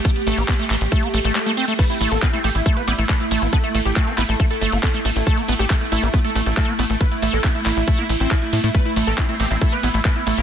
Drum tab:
CC |----------------|x---------------|----------------|----------------|
RD |--x---x---x---x-|--x---x---x---x-|--x---x---x---x-|--x---x---x---x-|
HH |xxoxxxoxxxoxxxox|xxoxxxoxxxoxxxox|xxoxxxoxxxoxxxox|xxoxxxoxxxoxxxox|
CP |----x-x-----x---|----x-------x---|----x-x-----x---|----x-------x---|
BD |o---o---o-------|o---o---o---o---|o---o---o---o---|o---o---o---o---|

CC |----------------|----------------|
RD |--x---x---x---x-|--x---x---x---x-|
HH |xxoxxxoxxxoxxxox|xxoxxxoxxxoxxxox|
CP |----x-x-----x---|----x-------x---|
BD |o---o---o---o---|o---o---o---o---|